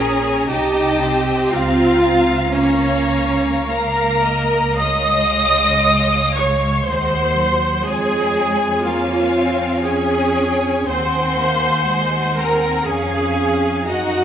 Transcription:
Already playing: double bass section A#1, cello section C#4, viola section G#4, violin section C#5 A#5
0.00 violin section G#5
0.46 double bass section C2, cello section D#4, viola section G4, violin section D#5 A5
0.50 violin section G5
1.01 cello section C4
1.50 double bass section C#2, viola section F4, violin section F5 A#5
2.53 cello section A#3, viola section C#4, violin section C#5 F5 A#5
3.66 cello section A#3, viola section A#4, violin section F5 A#5
4.21 violin section D#5
4.75 cello section G#3, violin section C#5 F5 D#6, viola section D#5
6.33 viola section C#5, violin section C#6
6.84 double bass section D#2, cello section G#3, viola section C5, violin section C5 F#5
6.88 violin section C6
7.35 cello section F#3
7.84 double bass section F2, cello section G#3, viola section G#4, violin section C#5 G#5
8.82 cello section A#3, viola section F4, violin section C#5 F5 G#5
9.35 cello section C4
9.84 cello section C#4, viola section G#4, violin section C#5 G#5
10.86 double bass section D#2, cello section C4, viola section C5, violin section F#5 G#5 C6
11.37 cello section A#3
11.87 cello section G#3
12.35 cello section C4, viola section A#4
12.40 violin section A#5
12.84 double bass section F2, cello section C#4, viola section G#4, violin section F5 G#5
13.85 double bass section F#2, cello section D#4, viola section F#4, violin section D#5 F#5 A#5

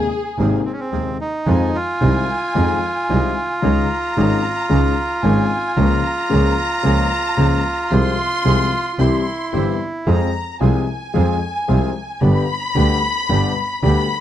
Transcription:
Already playing: violin section G#4
0.38 double bass G#1, grand piano G#1 G#2 C3 G#3 A#3 D#4, bandoneon A#3 C4 G#4
0.66 bandoneon C4
0.73 bandoneon C#4
0.80 bandoneon C4
0.92 grand piano D#1 D#2 C3 G#3 A#3 D#4, double bass D#2, bandoneon A#3 C4 G#4
1.21 bandoneon D#4
1.46 double bass F2, grand piano F2 D#3 F3 G#3 C4 F4, bandoneon D#4 F4 G#4, violin section G#5
1.76 bandoneon F4
2.01 double bass C2, grand piano C2 C3 D#3 G#3 C4 F4, bandoneon D#4 F4 G#4
2.55 grand piano F2 D#3 F3 G#3 C4 F4, double bass F2, bandoneon D#4 F4 G#4
3.09 grand piano C2 C3 D#3 G#3 C4 F4, double bass C2, bandoneon D#4 F4 G#4
3.62 grand piano C#2 C#3 D#3 G#3 C#4 G#4, double bass C#2, bandoneon C#4 D#4 G#4, violin section A#5
4.16 grand piano G#1 G#2 D#3 G#3 C#4 G#4, double bass G#1, bandoneon C#4 D#4 G#4
4.69 grand piano C#2 C#3 D#3 G#3 C#4 G#4, double bass C#2, bandoneon C#4 D#4 G#4
5.23 grand piano G#1 G#2 D#3 G#3 C#4 G#4, double bass G#1, bandoneon C#4 D#4 G#4, violin section G#5
5.77 double bass C#2, grand piano C#2 C#3 F3 A#3 C#4 G#4, bandoneon A#3 C#4 G#4, violin section A#5
6.29 grand piano C#2 C#3 F3 A#3 C#4 G#4, double bass C#2, bandoneon A#3 C#4 G#4
6.83 grand piano C#2 C#3 F3 A#3 C#4 G#4, double bass C#2, bandoneon A#3 C#4 G#4
7.37 double bass C#2, grand piano C#2 C#3 F3 A#3 C#4 G#4, bandoneon A#3 C#4 G#4
7.91 double bass C2, grand piano C2 C3 F3 G#3 C4 G#4, bandoneon C4 F4 G#4, violin section C6
8.44 grand piano C2 C3 F3 G#3 C4 G#4, double bass C2, bandoneon C4 F4 G#4
8.93 bandoneon F4
8.98 double bass C2, grand piano C2 C3 E3 G3 C4 G4, bandoneon C4 E4 G4, violin section C6
9.52 double bass G1, grand piano G1 G2 E3 G3 C4 G4, bandoneon C4 E4 G4
10.06 double bass F2, grand piano F2 F3 G#3 C4 G#4, bandoneon C4 F4 G#4, violin section A#5
10.60 grand piano C2 C3 F3 G#3 C4 G#4, double bass C2, bandoneon C4 F4 G#4, violin section G#5
11.14 grand piano F2 F3 G#3 C4 G#4, double bass F2, bandoneon C4 F4 G#4
11.68 grand piano C2 C3 F3 G#3 C4 G#4, double bass C2, bandoneon C4 F4 G#4
12.21 grand piano G1 G2 D3 G3 B3 G4, double bass G1, bandoneon B3 D4 G4, violin section B5
12.75 double bass D2, grand piano D2 D3 G3 B3 G4, bandoneon B3 D4 G4
13.29 grand piano G1 G2 D3 G3 B3 G4, double bass G1, bandoneon B3 D4 G4
13.83 double bass D2, grand piano D2 D3 G3 B3 G4, bandoneon B3 D4 G4, violin section B5

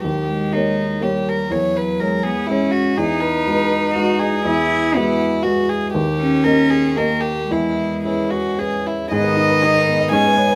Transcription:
0.03 upright piano D#2, violin G4
0.28 cello G#3
0.53 upright piano A#3 G4 C#5, violin D#4
1.01 cello G3, upright piano A#3 G4 C#5, violin G4
1.28 violin A#4
1.50 upright piano E2, cello F#3, violin C#5
1.76 violin B4
2.00 upright piano G#3 G#4 C#5, violin A#4
2.23 cello B3, violin G#4
2.47 upright piano G#3 G#4 C#5, cello C#4, violin E4
2.71 violin F#4
2.97 upright piano E2, cello D#4, violin G#4
3.20 violin B4
3.47 upright piano G#3 F#4 B4
3.94 upright piano G#3 F#4 B4, violin F#4
4.20 violin G#4
4.45 upright piano E2, cello E4
4.94 upright piano G#3 F#4 B4, cello B3, violin E4
5.42 upright piano G#3 F#4 B4, violin F#4
5.69 violin G#4
5.93 upright piano D#2, violin G4
6.21 cello C#4
6.44 upright piano A#3 G4 D#5, violin A#4
6.70 violin G#4
6.96 cello A#3, upright piano A#3 G4 D#5, violin A#4
7.21 violin G4
7.50 upright piano E2, cello G#3, violin E4
8.05 upright piano C#4 G#4 B4, violin E4
8.31 violin F#4
8.58 upright piano C#4 G#4 B4, violin G#4
8.86 violin E4
9.11 upright piano G#2, cello D#3, viola B3, harp G#4, violin D#5
9.24 upright piano B4
9.37 upright piano D#4, harp D#5
9.49 harp B4, upright piano B4
9.62 upright piano D#4, viola D#4, harp G#4
9.75 upright piano B4
9.87 upright piano B3, harp B4
9.99 upright piano B4, harp D#5
10.11 cello G#3, viola C#4, upright piano D#4, harp G#4, violin G#5
10.23 upright piano B4, harp D#5
10.36 viola B3, upright piano C#5, harp D#5
10.49 upright piano B4, harp D#5

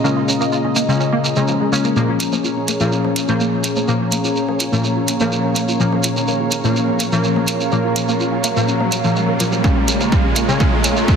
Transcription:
Already playing: ambient pad A#2 C#4 G#4 D#5 A#5, analog synth pad A#3 F4 D#5
0.04 synth stab C#3 G#3 C#4, synth pluck A#3, shekere
0.17 synth pluck F4
0.28 synth pluck C#4, shekere
0.41 synth pluck A#3, shekere
0.52 synth pluck F4, shekere
0.65 synth pluck C#4
0.76 synth pluck A#3, shekere
0.88 synth stab C#3 G#3 C#4, synth pluck F4, shekere
1.00 synth pluck C#4, shekere
1.13 synth pluck A#3
1.24 synth pluck A#3, shekere
1.36 synth stab C#3 G#3 C#4, synth pluck G#3, shekere
1.48 synth pluck F3, shekere
1.61 synth pluck G#3
1.72 synth stab C#3 G#3 C#4, synth pluck A#3, shekere
1.84 synth pluck A#3, shekere
1.96 synth stab A#2 F3 A#3, analog synth pad A#3 G#4 C#5, synth pluck A#3, riser, shekere
2.08 synth pluck F4
2.20 synth pluck C#4, closed hi-hat, shekere
2.32 synth pluck A#3, low conga, shekere
2.44 synth pluck F4, shekere
2.57 synth pluck C#4
2.68 synth pluck A#3, ambient pad F5, closed hi-hat, shekere
2.80 synth stab A#2 F3 A#3, synth pluck F4, shekere
2.92 synth pluck C#4, shekere
3.05 synth pluck A#3, low conga
3.16 synth pluck F4, closed hi-hat, shekere
3.28 synth stab A#2 F3 A#3, synth pluck C#4, shekere
3.40 synth pluck A#3, shekere
3.53 synth pluck F4
3.64 synth pluck C#4, closed hi-hat, shekere
3.76 synth pluck A#3, low conga, shekere
3.88 synth stab A#2 F3 A#3, synth pluck F4, shekere
4.00 synth pluck C#4
4.12 synth pluck A#3, closed hi-hat, shekere
4.24 synth pluck F4, shekere
4.36 synth pluck C#4, shekere
4.49 synth pluck A#3, low conga
4.60 synth pluck F4, closed hi-hat, shekere
4.72 synth stab A#2 F3 A#3, synth pluck C#4, shekere
4.84 synth pluck A#3, shekere
4.97 synth pluck F4
5.08 synth pluck C#4, closed hi-hat, shekere
5.20 synth stab A#2 F3 A#3, synth pluck A#3, low conga, shekere
5.32 synth pluck F4, shekere
5.45 synth pluck C#4
5.56 synth pluck A#3, closed hi-hat, shekere
5.68 synth pluck F4, shekere
5.80 synth stab A#2 F3 A#3, synth pluck C#4, analog synth pad A#4, shekere
5.92 synth pluck A#3, low conga
6.03 synth pluck F4, closed hi-hat, shekere
6.16 synth pluck C#4, shekere
6.28 synth pluck A#3, shekere
6.40 synth pluck F4
6.51 synth pluck C#4, closed hi-hat, shekere
6.64 synth stab A#2 F3 A#3, synth pluck A#3, low conga, shekere
6.76 synth pluck F4, shekere
6.89 synth pluck C#4
7.00 synth pluck A#3, closed hi-hat, shekere
7.12 synth stab A#2 F3 A#3, synth pluck F4, shekere
7.24 synth pluck C#4, shekere
7.36 synth pluck A#3, low conga
7.48 synth pluck F4, closed hi-hat, shekere
7.60 synth pluck C#4, shekere
7.72 synth stab A#2 F3 A#3, synth pluck A#3, shekere
7.84 synth pluck F4
7.96 synth pluck C#4, closed hi-hat, shekere
8.08 synth pluck A#3, low conga, shekere
8.20 synth pluck F4, shekere
8.32 synth pluck C#4
8.44 synth pluck A#3, closed hi-hat, shekere
8.56 synth stab A#2 F3 A#3, synth pluck F4, shekere
8.68 synth pluck C#4, shekere
8.80 synth pluck A#3, low conga
8.92 synth pluck C#5, closed hi-hat, shekere
9.04 synth stab A#2 F3 A#3, synth pluck F4, shekere
9.16 synth pluck G#3, shekere
9.28 synth pluck A#4
9.40 synth stab A#2 F3 A#3, synth pluck F4, closed hi-hat, shekere
9.52 synth pluck A#3, low conga, shekere
9.64 ambient pad A#2, synth stab C#3 G#3 C#4, synth pluck A#3, analog synth pad F4 C#5, kick, mid tom, shekere
9.77 synth pluck F4
9.88 synth pluck C#4, closed hi-hat, shekere
10.01 synth pluck A#3, mid tom, low conga, shekere
10.12 synth pluck F4, kick, shekere
10.24 synth pluck C#4
10.36 synth pluck A#3, closed hi-hat, mid tom, shekere
10.48 synth stab C#3 G#3 C#4, synth pluck F4, shekere
10.60 synth stab C#3 G#3 C#4, synth pluck A#3, kick, mid tom, shekere
10.72 synth pluck F4, low conga
10.84 synth pluck C#4, closed hi-hat, shekere
10.96 synth pluck A#3, shekere
11.08 synth pluck F4, kick, shekere

